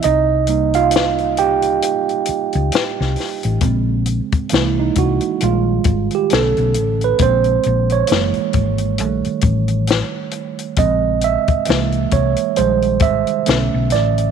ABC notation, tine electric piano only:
X:1
M:4/4
L:1/16
Q:"Swing 16ths" 1/4=67
K:Cphr
V:1 name="Tine electric piano"
[Ee]3 [Ff]3 [Gg]6 z4 | z4 =E _E _G2 F3 =G =A3 =B | c3 d6 z6 z | e2 =e4 d2 c2 e4 =d2 |]
V:2 name="Tine electric piano" clef=bass
z2 [G,B,E]6 z8 | [D,A,C]4 [=E,^G,B,]4 [_E,=G,A,]4 [=D,=A,_D]4 | [D,A,C]4 [_F,A,B,]4 [E,G,=A,]8 | [D,A,C]4 [=E,^G,B,]4 [_E,=G,A,]4 [=D,=A,_D]2 z2 |]